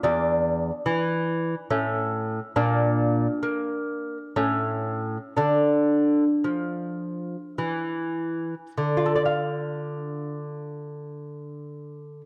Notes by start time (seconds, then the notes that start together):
0.03 E2 D4
0.86 E3
1.70 A2 C#4
2.56 A#2 D4
3.43 A#3
4.36 A2 C#4
5.37 D3 D4
6.44 F3
7.58 E3
8.78 D3
8.97 F4
9.06 A4
9.16 D5
9.25 F5